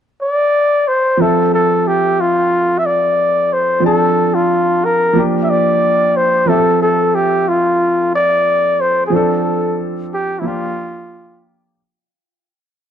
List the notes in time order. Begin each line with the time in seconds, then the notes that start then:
0.21 D5
0.88 C5
1.17 F3 C4 A4
1.22 A4 E5
1.54 A4
1.88 G4
2.20 F4
2.78 E5
2.86 D5
3.53 C5
3.80 F3 C4 D4
3.86 A4 A5
4.35 F4
4.85 A#4
5.13 F3 A#3 D4
5.19 G4
5.43 E5
5.50 D5
6.17 C5
6.46 F3 C4 A4 E5
6.52 G4
6.58 A4
6.82 A4
7.15 G4
7.49 F4
8.15 D5
8.81 C5
9.06 F3 G#4
9.12 C4 D4 A4
10.14 G4
10.40 F3 A#3 E4
10.45 D4 F4 G4